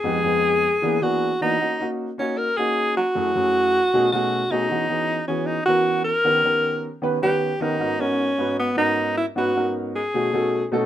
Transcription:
X:1
M:4/4
L:1/8
Q:1/4=155
K:G#m
V:1 name="Alto saxophone"
G4- G F2 D- | D2 z C A G2 F- | F4- F F2 D- | D3 C D F2 A- |
A4 z =G2 D- | D C3 B, D2 E | F2 z G4 z |]
V:2 name="Upright piano"
[=F,,_A,_C_E=G] [F,,A,CE_A]2 z [=E,^A,B,=D^G] [E,A,B,DG] z [E,A,B,D^F] | [A,CDF] [A,CDF] z [A,CDF] z [A,CDF]2 z | [F,,=A,CEG] [F,,A,CEG]2 z [B,,A,CDFG] [B,,A,CDFG] z [B,,A,CDFG] | [E,B,CFG] [E,B,CFG] z [E,B,CFG] z [E,B,CFA]2 z |
[D,B,C=GA] [D,B,CGA]2 z [D,B,CGB] [D,B,CGB] z [D,B,CGA] | [G,,B,CDFA] [G,,B,CDFA] z [G,,B,CDFB] z [G,,B,CDFA]2 z | [G,,B,CDFB] [G,,B,CDFA]2 z [B,,=A,CDFG] [B,,A,CDF=A] z [B,,A,CDFA] |]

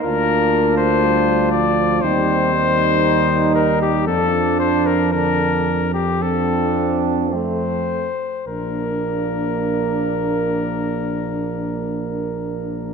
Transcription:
X:1
M:4/4
L:1/16
Q:1/4=55
K:Bb
V:1 name="Cornet"
B3 c3 d2 c6 B G | A2 c B B3 G A3 z c4 | B16 |]
V:2 name="Flugelhorn"
F8 E8 | D4 D2 z2 D4 C2 z2 | B16 |]
V:3 name="Trombone"
D8 C4 E4 | D4 D2 z2 C4 A,2 z2 | B,16 |]
V:4 name="French horn" clef=bass
B,4 G,2 F,2 G,2 G,6 | F,4 D,2 z2 F,4 A,2 z2 | D16 |]
V:5 name="Tuba" clef=bass
D,,8 E,,8 | F,,12- F,,2 z2 | B,,,16 |]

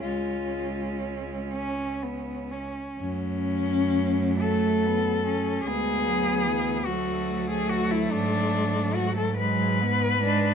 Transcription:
X:1
M:6/8
L:1/16
Q:3/8=48
K:F#m
V:1 name="Cello"
^E6 z6 | C6 A6 | G6 F3 G F E | D4 F A B6 |]
V:2 name="Cello"
G,6 C2 B,2 C2 | z6 A,2 B,2 C2 | B,6 A,6- | A,6 G,2 B,2 D2 |]
V:3 name="Cello" clef=bass
C8- C3 z | A,12 | G,2 F,2 E,2 F,6- | F,6 F,2 G,2 G,2 |]
V:4 name="Cello" clef=bass
C,,8- C,,3 z | F,,12 | D,,12 | G,,12 |]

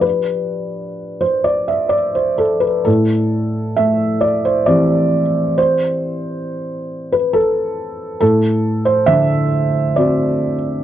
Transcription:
X:1
M:3/4
L:1/16
Q:1/4=66
K:C
V:1 name="Felt piano"
B4- B c d e d c A B | A4 e2 d c d4 | c6- c B A4 | A3 c e4 d4 |]
V:2 name="Felt piano"
[F,DG]12 | A,,4 A,4 [E,CG]4- | [E,CG]12 | A,,4 D,4 [C^F]4 |]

